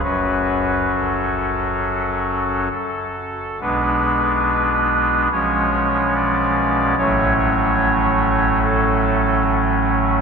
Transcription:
X:1
M:4/4
L:1/8
Q:1/4=72
K:F#m
V:1 name="Pipe organ"
B2 A4 A2 | B4 c2 d2 | c c3 A2 z2 |]
V:2 name="Pipe organ" clef=bass
[F,,,F,,F,CF]6 z2 | [B,,,B,,G,B,D]4 [B,,,B,,^E,G,C]4 | [A,,,A,,F,A,C]8 |]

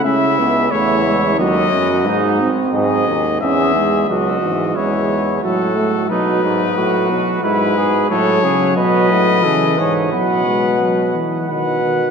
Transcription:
X:1
M:3/4
L:1/8
Q:1/4=89
K:C#phr
V:1 name="Trumpet"
e2 c2 ^d2- | ^d z d2 e2 | ^d2 c2 A2 | B4 B2 |
[K:Alyd] c2 d4 | f3 z f2 |]
V:2 name="Trumpet"
E2 E2 F2 | ^D z G2 G2 | F2 E2 F2 | ^D D F2 E G |
[K:Alyd] A G B2 A c | B3 z B2 |]
V:3 name="Trombone" clef=bass
C B, A, G, F,2 | G, ^B,2 z C G, | F, E, G,2 F, A, | F,2 F,2 G,2 |
[K:Alyd] F,4 E,2 | F, G, F, E, D, D, |]
V:4 name="Euphonium" clef=bass
C, C,, E,,2 ^D,, F,, | G,, z G,, ^D,, E,,2 | C,, G,, E,,2 A,,2 | B,, G,, A,, B,, G,,2 |
[K:Alyd] A,, C, B,, A,, C, G,, | B,,3 z B,,2 |]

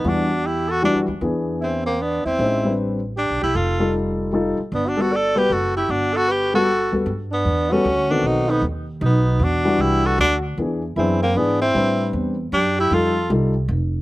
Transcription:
X:1
M:3/4
L:1/16
Q:"Swing" 1/4=154
K:G
V:1 name="Alto saxophone"
F4 G2 A2 F2 z2 | z4 E2 C2 D2 E2- | E4 z4 G2 G2 | A4 z8 |
(3D2 F2 A2 d2 B2 A2 G2 | F2 A2 B2 A4- A z | z2 D4 F4 F2 | F2 ^D2 z4 D4 |
F4 G2 A2 F2 z2 | z4 E2 C2 D2 E2- | E4 z4 G2 G2 | A4 z8 |]
V:2 name="Grand piano"
[E,G,DF]2 z6 [E,G,DF]2 z2 | [E,B,D^G]6 z6 | [_A,^C_E=c]2 [G,=CDB]4 z6 | z2 [G,_E=FA]6 [G,EFA]2 z2 |
z2 [G,B,FA]2 z2 [G,B,FB]2 z4 | z6 [G,B,FA]2 z2 [G,B,FA]2 | z6 [G,B,FA]2 z2 [_E,B,CA]2- | [_E,B,CA]4 z8 |
z2 [E,G,DF]6 z4 | [E,B,D^G]2 z2 [E,B,DG]2 z2 [E,B,DG]2 z2 | [G,CDB]6 z6 | [G,_E=FA]2 z2 [G,EFA]2 z6 |]
V:3 name="Tenor saxophone"
D4 E2 F2 D2 z2 | z4 C2 _B,2 =B,2 C2- | C4 z4 D2 E2 | =F4 z8 |
(3B,2 D2 F2 A2 G2 F2 E2 | D2 F2 G2 F4- F z | z2 B,4 ^C4 D2 | ^D2 B,2 z4 B,4 |
D4 E2 F2 D2 z2 | z4 C2 _B,2 =B,2 C2- | C4 z4 D2 E2 | =F4 z8 |]
V:4 name="Upright bass" clef=bass
E,,8- (3E,,2 F,,2 _E,,2 | E,,8- E,,2 E,,2 | A,,,8- (3A,,,2 B,,,2 C,,2 | =F,,,8- F,,,2 z2 |
G,,,8 F,,,4 | G,,,8- G,,,2 D,,2 | G,,4 E,,4 D,,4 | B,,,4 ^D,,4 B,,,4 |
E,,4 C,,4 D,,4 | E,,4 F,,4 ^G,,4 | A,,4 E,,4 F,,4 | =F,,4 C,,4 =F,,,4 |]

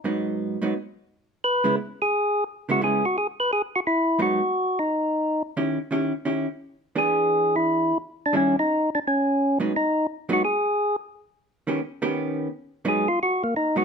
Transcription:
X:1
M:4/4
L:1/8
Q:"Swing" 1/4=174
K:D#m
V:1 name="Tonewheel organ"
z8 | B2 z G3 z F | G F G B G F =E2 | F3 D4 z |
z8 | G3 =E3 z =D | C D2 =D C3 z | D2 z F G3 z |
z8 | z2 G E F A, D F |]
V:2 name="Hollow-body jazz guitar"
[G,,F,B,D]3 [G,,F,B,D] z4 | z [C,G,B,=E] z4 z [C,G,B,E] | [C,G,B,=E] z6 z | [G,,F,B,D] z6 z |
[D,C=E=G] z [D,CEG] z [D,CEG] z3 | [=E,B,=DG]4- [E,B,DG] z3 | [D,=G,C=E] z6 [^G,,F,B,D] | z3 [G,,F,B,D] z4 |
z3 [D,B,C=G] z [D,B,CG]3 | z2 [G,,F,B,D] z4 [G,,F,B,D] |]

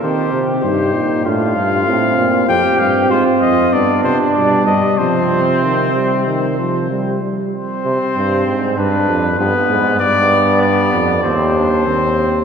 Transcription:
X:1
M:4/4
L:1/8
Q:1/4=96
K:Fdor
V:1 name="Trumpet"
c z c2 f4 | [K:Cm] g f c e d c d e | c6- c z | c4 =B2 B2 |
d2 d2 c4 |]
V:2 name="Flugelhorn"
G2 G2 F4 | [K:Cm] G2 F2 D4 | C6- C z | C4 D2 =B,2 |
=B,4 C D C2 |]
V:3 name="Euphonium" clef=bass
C2 E2 D2 C2 | [K:Cm] C4 =B,2 G,2 | F,2 E, G, E, F, G, G, | z8 |
z8 |]
V:4 name="Bass trombone" clef=bass
E, C, G,, B,, =A,, G,, A,, B,, | [K:Cm] F,, G,, A,, F,, G,, C, =B,, G,, | C,6- C, z | z C, G,, A,, G,, F,, G,, A,, |
G,,3 F,, E,,2 E,,2 |]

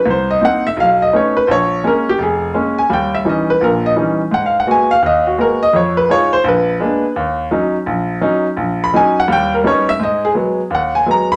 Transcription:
X:1
M:4/4
L:1/8
Q:"Swing" 1/4=169
K:Bbphr
V:1 name="Grand piano"
=c e g _f =f ^d ^c =B | [=cd]2 B =G A2 z a | =g _f e c B e z2 | (3g f g a f e G B e |
d c d =c _c4 | z8 | z c' a g =g B d _f | [K:G#m] d G z2 f g a b |]
V:2 name="Grand piano" clef=bass
=C,,2 [B,=CE] z =B,,,2 [=A,=B,^C^D] z | B,,,2 [A,B,D] z F,,,2 [A,B,D] z | [E,,=G,]2 [_F,G,DE] z [B,,,B,,]2 [F,G,DE] z | A,,2 [A,B,CG] z E,,2 [A,B,CG] z |
F,,2 [A,EF] z B,,,2 [A,B,C=D] z | E,,2 [G,DE] z B,,,2 [G,DE] z | B,,,2 [G,DE] z [E,,=G,]2 [G,CDE] z | [K:G#m] G,,2 [F,G,B,] z D,,2 [F,G,B,] z |]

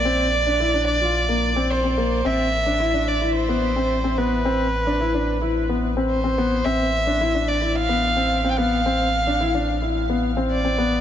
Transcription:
X:1
M:4/4
L:1/16
Q:1/4=109
K:Am
V:1 name="Violin"
d12 c4 | e6 d2 c6 B2- | B8- B2 z2 c4 | e6 d2 f4- f3/2 g/2 f2- |
f8- f2 z2 d4 |]
V:2 name="Grand piano"
C2 z D E D2 F2 _B,2 C2 C B,2 | C2 z D E D2 E2 B,2 C2 C B,2 | C2 z D E D2 E2 B,2 C2 C B,2 | C2 z D E D2 E2 B,2 C2 C B,2 |
C2 z D E D2 E2 B,2 C2 C B,2 |]
V:3 name="Sub bass" clef=bass
_B,,,16 | A,,,16- | A,,,16 | A,,,16- |
A,,,16 |]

